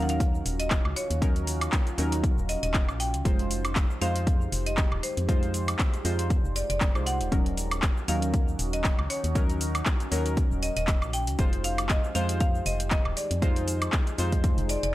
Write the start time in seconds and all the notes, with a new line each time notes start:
Already playing: D#2 F#3 C#4 D#4 F4 F#4 A#4, sub drop
0.02 F#5
0.09 F5, closed hi-hat, shaker
0.20 kick, closed hi-hat, shaker
0.35 shaker
0.46 D#1, open hi-hat, shaker
0.60 D#5, closed hi-hat, shaker
0.71 kick, clap, closed hi-hat, shaker
0.85 C#2, high woodblock
0.96 C#5, open hi-hat, shaker
1.10 D#2, closed hi-hat, shaker
1.21 F#3 C#4 D#4 A#4, kick, closed hi-hat, shaker
1.36 closed hi-hat, shaker
1.47 open hi-hat, shaker
1.61 closed hi-hat, high woodblock, shaker
1.72 kick, clap, closed hi-hat, shaker
1.87 closed hi-hat, shaker
1.98 D#2 F#3 C#4 D#4 A#4, open hi-hat, shaker
2.12 closed hi-hat, shaker
2.24 kick, closed hi-hat, shaker
2.38 D#1, shaker
2.49 D#5, open hi-hat, shaker
2.63 D#1 D#5, closed hi-hat, shaker
2.74 kick, clap, closed hi-hat, shaker
2.88 A#1, high woodblock, shaker
3.00 G5, open hi-hat, shaker
3.14 C#2, closed hi-hat, shaker
3.25 F1 G#3 D#4 F4 G4 C5, kick, closed hi-hat, shaker
3.39 closed hi-hat
3.51 open hi-hat, shaker
3.65 closed hi-hat, high woodblock, shaker
3.76 kick, clap, closed hi-hat, shaker
3.91 shaker
4.01 F2 G#3 D#4 F4 C5 F5, open hi-hat, shaker
4.16 closed hi-hat, shaker
4.27 kick, closed hi-hat, shaker
4.41 shaker
4.52 F1, open hi-hat, shaker
4.66 D#5, closed hi-hat, shaker
4.77 kick, clap, closed hi-hat, shaker
4.92 D#1, high woodblock
5.03 C5, open hi-hat, shaker
5.17 F2, closed hi-hat, shaker
5.28 G#3 D#4 F4 C5 D5, kick, closed hi-hat, shaker
5.43 closed hi-hat, shaker
5.54 open hi-hat, shaker
5.68 closed hi-hat, high woodblock, shaker
5.79 kick, clap, closed hi-hat, shaker
5.94 closed hi-hat, shaker
6.04 F2 G#3 D#4 F4 C5, open hi-hat, shaker
6.19 closed hi-hat, shaker
6.30 kick, closed hi-hat, shaker
6.44 F1, shaker
6.56 D5, open hi-hat, shaker
6.70 F1 D5, closed hi-hat, shaker
6.81 kick, clap, closed hi-hat, shaker
6.95 C2 G#3 D#4 F4 C5, high woodblock, shaker
7.06 F#5, open hi-hat, shaker
7.21 D#1, closed hi-hat, shaker
7.31 D#1 F#3 C#4 D#4 F#4 A#4, kick, closed hi-hat, shaker
7.46 closed hi-hat
7.57 open hi-hat, shaker
7.71 closed hi-hat, high woodblock, shaker
7.82 kick, clap, closed hi-hat, shaker
7.97 shaker
8.08 D#2 F#3 C#4 D#4 A#4 F5, open hi-hat, shaker
8.22 closed hi-hat, shaker
8.34 kick, closed hi-hat, shaker
8.48 shaker
8.59 D#1, open hi-hat, shaker
8.73 D#5, closed hi-hat, shaker
8.84 kick, clap, closed hi-hat, shaker
8.99 C#2, high woodblock
9.10 C#5, open hi-hat, shaker
9.24 D#2, closed hi-hat, shaker
9.35 F#3 C#4 D#4 A#4, kick, closed hi-hat, shaker
9.49 closed hi-hat, shaker
9.61 open hi-hat, shaker
9.75 closed hi-hat, high woodblock, shaker
9.86 kick, clap, closed hi-hat, shaker
10.00 closed hi-hat, shaker
10.11 D#2 F#3 C#4 D#4 A#4, open hi-hat, shaker
10.26 closed hi-hat, shaker
10.37 kick, closed hi-hat, shaker
10.51 D#1, shaker
10.63 D#5, open hi-hat, shaker
10.77 D#1 D#5, closed hi-hat, shaker
10.87 kick, clap, closed hi-hat, shaker
11.02 A#1, high woodblock, shaker
11.13 G5, open hi-hat, shaker
11.27 C#2, closed hi-hat, shaker
11.38 F1 G#3 D#4 F4 G4 C5, kick, closed hi-hat, shaker
11.53 closed hi-hat
11.64 F5, open hi-hat, shaker
11.78 closed hi-hat, high woodblock, shaker
11.89 D#5, kick, clap, closed hi-hat, shaker
12.04 shaker
12.15 F2 G#3 D#4 F4 C5 F5, open hi-hat, shaker
12.29 closed hi-hat, shaker
12.40 F5, kick, closed hi-hat, shaker
12.55 shaker
12.66 F1 D#5, open hi-hat, shaker
12.80 closed hi-hat, shaker
12.91 D#5, kick, clap, closed hi-hat, shaker
13.05 D#1, high woodblock
13.17 D5, open hi-hat, shaker
13.31 F2, closed hi-hat, shaker
13.42 G#3 D#4 F4 G#4 C5, kick, closed hi-hat, shaker
13.56 closed hi-hat, shaker
13.68 open hi-hat, shaker
13.82 closed hi-hat, high woodblock, shaker
13.93 kick, clap, closed hi-hat, shaker
14.07 closed hi-hat, shaker
14.18 F2 G#3 D#4 F4 C5, open hi-hat, shaker
14.32 kick, closed hi-hat, shaker
14.44 kick, closed hi-hat, shaker
14.58 F1, closed hi-hat, shaker
14.69 D5, open hi-hat, shaker
14.83 F1 D5, closed hi-hat, shaker